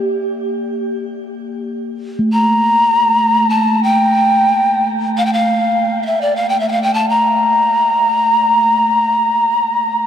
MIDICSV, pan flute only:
0, 0, Header, 1, 2, 480
1, 0, Start_track
1, 0, Tempo, 500000
1, 9663, End_track
2, 0, Start_track
2, 0, Title_t, "Pan flute"
2, 0, Program_c, 0, 75
2, 2234, Note_on_c, 0, 82, 87
2, 3358, Note_on_c, 0, 81, 80
2, 3372, Note_off_c, 0, 82, 0
2, 3680, Note_on_c, 0, 79, 86
2, 3695, Note_off_c, 0, 81, 0
2, 4686, Note_off_c, 0, 79, 0
2, 4970, Note_on_c, 0, 77, 74
2, 5049, Note_on_c, 0, 79, 62
2, 5063, Note_off_c, 0, 77, 0
2, 5118, Note_on_c, 0, 77, 75
2, 5133, Note_off_c, 0, 79, 0
2, 5785, Note_off_c, 0, 77, 0
2, 5785, Note_on_c, 0, 77, 50
2, 5818, Note_on_c, 0, 76, 68
2, 5833, Note_off_c, 0, 77, 0
2, 5966, Note_on_c, 0, 74, 69
2, 5981, Note_off_c, 0, 76, 0
2, 6106, Note_on_c, 0, 77, 70
2, 6120, Note_off_c, 0, 74, 0
2, 6232, Note_on_c, 0, 79, 71
2, 6247, Note_off_c, 0, 77, 0
2, 6331, Note_off_c, 0, 79, 0
2, 6337, Note_on_c, 0, 76, 66
2, 6418, Note_on_c, 0, 79, 47
2, 6433, Note_off_c, 0, 76, 0
2, 6447, Note_on_c, 0, 77, 68
2, 6461, Note_off_c, 0, 79, 0
2, 6552, Note_on_c, 0, 79, 70
2, 6566, Note_off_c, 0, 77, 0
2, 6662, Note_on_c, 0, 81, 73
2, 6676, Note_off_c, 0, 79, 0
2, 6808, Note_on_c, 0, 82, 81
2, 6823, Note_off_c, 0, 81, 0
2, 9663, Note_off_c, 0, 82, 0
2, 9663, End_track
0, 0, End_of_file